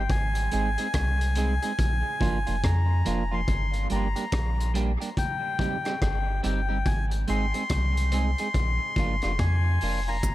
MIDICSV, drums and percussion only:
0, 0, Header, 1, 2, 480
1, 0, Start_track
1, 0, Tempo, 845070
1, 56, Time_signature, 4, 2, 24, 8
1, 5878, End_track
2, 0, Start_track
2, 0, Title_t, "Drums"
2, 54, Note_on_c, 9, 36, 107
2, 55, Note_on_c, 9, 42, 76
2, 111, Note_off_c, 9, 36, 0
2, 112, Note_off_c, 9, 42, 0
2, 199, Note_on_c, 9, 42, 57
2, 256, Note_off_c, 9, 42, 0
2, 292, Note_on_c, 9, 42, 61
2, 349, Note_off_c, 9, 42, 0
2, 443, Note_on_c, 9, 42, 53
2, 499, Note_off_c, 9, 42, 0
2, 532, Note_on_c, 9, 42, 105
2, 534, Note_on_c, 9, 36, 119
2, 540, Note_on_c, 9, 37, 125
2, 589, Note_off_c, 9, 42, 0
2, 591, Note_off_c, 9, 36, 0
2, 597, Note_off_c, 9, 37, 0
2, 688, Note_on_c, 9, 42, 57
2, 745, Note_off_c, 9, 42, 0
2, 769, Note_on_c, 9, 42, 74
2, 826, Note_off_c, 9, 42, 0
2, 922, Note_on_c, 9, 42, 52
2, 979, Note_off_c, 9, 42, 0
2, 1015, Note_on_c, 9, 36, 108
2, 1017, Note_on_c, 9, 42, 92
2, 1072, Note_off_c, 9, 36, 0
2, 1074, Note_off_c, 9, 42, 0
2, 1254, Note_on_c, 9, 36, 100
2, 1263, Note_on_c, 9, 42, 83
2, 1311, Note_off_c, 9, 36, 0
2, 1320, Note_off_c, 9, 42, 0
2, 1402, Note_on_c, 9, 42, 49
2, 1459, Note_off_c, 9, 42, 0
2, 1498, Note_on_c, 9, 36, 110
2, 1499, Note_on_c, 9, 42, 91
2, 1502, Note_on_c, 9, 37, 115
2, 1554, Note_off_c, 9, 36, 0
2, 1556, Note_off_c, 9, 42, 0
2, 1559, Note_off_c, 9, 37, 0
2, 1736, Note_on_c, 9, 42, 76
2, 1793, Note_off_c, 9, 42, 0
2, 1976, Note_on_c, 9, 36, 106
2, 1977, Note_on_c, 9, 42, 81
2, 2033, Note_off_c, 9, 36, 0
2, 2034, Note_off_c, 9, 42, 0
2, 2122, Note_on_c, 9, 42, 53
2, 2179, Note_off_c, 9, 42, 0
2, 2215, Note_on_c, 9, 42, 60
2, 2271, Note_off_c, 9, 42, 0
2, 2364, Note_on_c, 9, 42, 56
2, 2420, Note_off_c, 9, 42, 0
2, 2455, Note_on_c, 9, 42, 105
2, 2456, Note_on_c, 9, 36, 124
2, 2462, Note_on_c, 9, 37, 121
2, 2512, Note_off_c, 9, 42, 0
2, 2513, Note_off_c, 9, 36, 0
2, 2519, Note_off_c, 9, 37, 0
2, 2615, Note_on_c, 9, 42, 54
2, 2672, Note_off_c, 9, 42, 0
2, 2699, Note_on_c, 9, 42, 77
2, 2755, Note_off_c, 9, 42, 0
2, 2848, Note_on_c, 9, 42, 57
2, 2905, Note_off_c, 9, 42, 0
2, 2937, Note_on_c, 9, 36, 110
2, 2942, Note_on_c, 9, 42, 89
2, 2994, Note_off_c, 9, 36, 0
2, 2999, Note_off_c, 9, 42, 0
2, 3175, Note_on_c, 9, 36, 94
2, 3187, Note_on_c, 9, 42, 79
2, 3232, Note_off_c, 9, 36, 0
2, 3244, Note_off_c, 9, 42, 0
2, 3324, Note_on_c, 9, 42, 47
2, 3330, Note_on_c, 9, 37, 66
2, 3381, Note_off_c, 9, 42, 0
2, 3386, Note_off_c, 9, 37, 0
2, 3418, Note_on_c, 9, 36, 102
2, 3419, Note_on_c, 9, 42, 78
2, 3421, Note_on_c, 9, 37, 106
2, 3475, Note_off_c, 9, 36, 0
2, 3476, Note_off_c, 9, 42, 0
2, 3478, Note_off_c, 9, 37, 0
2, 3657, Note_on_c, 9, 42, 71
2, 3713, Note_off_c, 9, 42, 0
2, 3895, Note_on_c, 9, 36, 112
2, 3895, Note_on_c, 9, 42, 74
2, 3952, Note_off_c, 9, 36, 0
2, 3952, Note_off_c, 9, 42, 0
2, 4040, Note_on_c, 9, 42, 53
2, 4097, Note_off_c, 9, 42, 0
2, 4133, Note_on_c, 9, 42, 58
2, 4190, Note_off_c, 9, 42, 0
2, 4283, Note_on_c, 9, 42, 49
2, 4340, Note_off_c, 9, 42, 0
2, 4371, Note_on_c, 9, 42, 102
2, 4374, Note_on_c, 9, 36, 117
2, 4379, Note_on_c, 9, 37, 120
2, 4428, Note_off_c, 9, 42, 0
2, 4430, Note_off_c, 9, 36, 0
2, 4435, Note_off_c, 9, 37, 0
2, 4528, Note_on_c, 9, 42, 58
2, 4585, Note_off_c, 9, 42, 0
2, 4611, Note_on_c, 9, 42, 80
2, 4668, Note_off_c, 9, 42, 0
2, 4761, Note_on_c, 9, 42, 53
2, 4818, Note_off_c, 9, 42, 0
2, 4853, Note_on_c, 9, 36, 102
2, 4856, Note_on_c, 9, 42, 83
2, 4910, Note_off_c, 9, 36, 0
2, 4913, Note_off_c, 9, 42, 0
2, 5091, Note_on_c, 9, 36, 95
2, 5099, Note_on_c, 9, 42, 78
2, 5148, Note_off_c, 9, 36, 0
2, 5156, Note_off_c, 9, 42, 0
2, 5236, Note_on_c, 9, 42, 46
2, 5242, Note_on_c, 9, 37, 66
2, 5293, Note_off_c, 9, 42, 0
2, 5298, Note_off_c, 9, 37, 0
2, 5334, Note_on_c, 9, 36, 106
2, 5334, Note_on_c, 9, 42, 84
2, 5336, Note_on_c, 9, 37, 110
2, 5391, Note_off_c, 9, 36, 0
2, 5391, Note_off_c, 9, 42, 0
2, 5393, Note_off_c, 9, 37, 0
2, 5572, Note_on_c, 9, 46, 69
2, 5628, Note_off_c, 9, 46, 0
2, 5812, Note_on_c, 9, 36, 120
2, 5813, Note_on_c, 9, 42, 76
2, 5813, Note_on_c, 9, 69, 76
2, 5869, Note_off_c, 9, 36, 0
2, 5870, Note_off_c, 9, 42, 0
2, 5870, Note_off_c, 9, 69, 0
2, 5878, End_track
0, 0, End_of_file